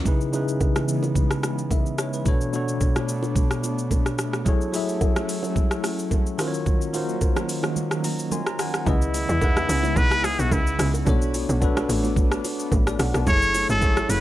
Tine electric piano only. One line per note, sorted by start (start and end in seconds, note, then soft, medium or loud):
0.04 0.28 C#3 medium
0.04 0.28 D#4 medium
0.04 0.29 E4 medium
0.04 0.29 G#4 medium
0.04 0.29 B4 loud
0.32 1.21 C#3 medium
0.32 1.22 D#4 medium
0.32 1.22 E4 medium
0.32 1.23 G#4 medium
0.32 1.23 B4 medium
1.71 1.97 E5 medium
1.99 2.13 C#5 medium
2.14 2.40 B4 medium
2.25 2.48 B2 medium
2.25 2.48 D4 medium
2.25 2.49 F#4 medium
2.25 2.49 A4 medium
2.25 2.50 C#5 loud
2.52 3.41 B2 medium
2.52 3.42 D4 medium
2.52 3.42 F#4 medium
2.52 3.43 A4 medium
2.52 3.43 C#5 medium
4.45 4.68 F#3 medium
4.45 4.68 E4 medium
4.45 4.69 G#4 medium
4.45 4.69 A4 medium
4.45 4.70 C#5 loud
4.73 5.62 F#3 medium
4.73 5.62 E4 medium
4.73 5.63 G#4 medium
4.73 5.63 A4 medium
4.73 5.63 E5 medium
6.38 6.83 D#3 medium
6.38 6.84 F4 medium
6.38 6.84 F#4 medium
6.38 6.85 A#4 medium
6.38 6.47 C5 medium
6.48 6.88 C#5 loud
6.93 7.82 D#3 medium
6.93 7.82 F4 medium
6.93 7.83 F#4 medium
6.93 7.83 A#4 medium
6.93 7.84 C5 loud
8.05 8.30 A#5 medium
8.32 8.57 G#5 medium
8.32 8.46 C6 medium
8.47 8.59 A#5 medium
8.60 8.74 F#5 medium
8.60 8.74 G#5 medium
8.75 9.01 F#5 medium
8.85 9.31 E4 medium
8.85 9.32 G#4 medium
8.85 9.32 B4 medium
8.85 9.33 D#5 medium
9.40 9.48 D#4 medium
9.40 10.30 G#4 medium
9.40 10.31 B4 medium
9.40 10.31 F#5 medium
9.47 10.33 E4 medium
11.05 11.51 D4 loud
11.05 11.52 F#4 medium
11.05 11.52 A4 medium
11.05 11.53 C#5 loud
11.61 12.50 D4 medium
11.61 12.50 F#4 medium
11.61 12.51 A4 medium
11.61 12.51 B4 loud
12.88 12.99 D5 medium
13.00 13.14 F#5 medium
13.15 13.41 A5 medium
13.26 13.71 E4 medium
13.26 13.72 G#4 medium
13.26 13.73 A4 medium
13.26 13.73 C#5 medium
13.81 14.20 E4 medium
13.81 14.20 G#4 medium
13.81 14.20 A4 medium
13.81 14.20 C#5 medium